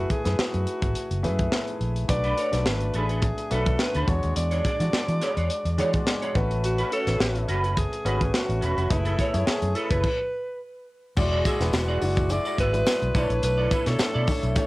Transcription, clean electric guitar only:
2.09 muted clean electric guitar stroke
2.24 D4 A4 B4
2.37 D4 A4 C#5
2.53 muted clean electric guitar stroke
2.66 muted clean electric guitar stroke
2.81 muted clean electric guitar stroke
2.94 D4 A4 B4
3.09 D4 A4 B4
3.23 muted clean electric guitar stroke
3.38 muted clean electric guitar stroke
3.51 D4 A4 B4
3.67 muted clean electric guitar stroke
3.80 muted clean electric guitar stroke
3.95 D4 A4 B4
4.08 muted clean electric guitar stroke
4.23 muted clean electric guitar stroke
4.36 muted clean electric guitar stroke
4.51 D4 G#4 C#5
4.65 D4 G#4 D5
4.80 muted clean electric guitar stroke
4.93 muted clean electric guitar stroke
5.08 muted clean electric guitar stroke
5.21 D4 G#4 C#5
5.37 D4 G#4 C#5
5.50 muted clean electric guitar stroke
5.65 muted clean electric guitar stroke
5.78 D4 G#4 C#5
5.93 muted clean electric guitar stroke
6.22 D4 G#4 C#5
6.35 muted clean electric guitar stroke
6.51 muted clean electric guitar stroke
6.63 muted clean electric guitar stroke
6.78 C#4 F#4 B4
6.91 C#4 F#4 C#5
7.07 muted clean electric guitar stroke
7.20 muted clean electric guitar stroke
7.35 muted clean electric guitar stroke
7.48 C#4 F#4 B4
7.63 C#4 F#4 B4
7.77 muted clean electric guitar stroke
7.92 muted clean electric guitar stroke
8.05 C#4 F#4 B4
8.20 muted clean electric guitar stroke
8.34 muted clean electric guitar stroke
8.49 muted clean electric guitar stroke
8.61 C#4 F#4 B4
8.77 C#4 F#4 B4
9.05 E4 A4 B4
9.18 E4 A4 C#5
9.34 muted clean electric guitar stroke
9.47 muted clean electric guitar stroke
9.62 muted clean electric guitar stroke
9.75 E4 A4 B4
9.90 E4 A4 B4
11.17 muted clean electric guitar stroke
11.31 F#4 G#4 D5
11.45 F#4 G#4 E5
11.60 muted clean electric guitar stroke
11.88 F#4 G#4 D5
12.02 muted clean electric guitar stroke
12.17 muted clean electric guitar stroke
12.30 muted clean electric guitar stroke
12.45 F#4 G#4 D5
12.58 F#4 G#4 E5
12.73 muted clean electric guitar stroke
12.87 muted clean electric guitar stroke
13.02 muted clean electric guitar stroke
13.15 E4 A4 D5
13.30 muted clean electric guitar stroke
13.43 muted clean electric guitar stroke
13.58 E4 A4 D5
13.71 E4 A4 E5
13.86 muted clean electric guitar stroke
13.99 muted clean electric guitar stroke
14.14 E4 A4 D5
14.28 muted clean electric guitar stroke
14.43 muted clean electric guitar stroke
14.56 muted clean electric guitar stroke

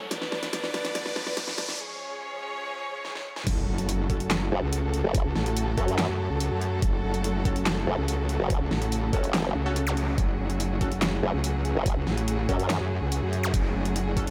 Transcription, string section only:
Already playing: F#3
0.11 B3 D4 B4 D5
1.79 F3 G#3 C#4 G#4 C#5
3.47 C#3 F#3 A3 F#4 A4
10.18 G#4

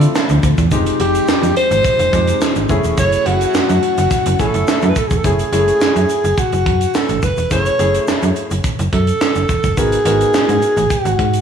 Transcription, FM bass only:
0.30 D2
0.43 D2
0.58 E2
0.72 F1
1.00 F1
1.28 F2
1.43 F2
1.71 G#1
1.99 F1
2.13 F2
2.56 G#1
2.69 F#1
2.84 E1
2.98 F#1
3.26 F#1
3.55 F#2
3.70 F#2
3.98 F#1
4.26 F#1
4.39 A1
4.54 F#1
4.83 F#2
5.11 E1
5.24 F#1
5.52 F#1
5.81 F#2
5.96 F#2
6.24 F#1
6.53 F#1
6.66 F#2
7.09 A1
7.23 F#1
7.38 E1
7.51 F#1
7.79 F#1
8.08 F#2
8.23 F#2
8.51 F#1
8.79 F#1
8.93 F#2
9.36 F#1
9.49 E1
9.64 F#1
9.77 G#1
10.05 G#1
10.34 G#2
10.49 G#2
10.77 A1
11.05 G#1
11.19 G#2

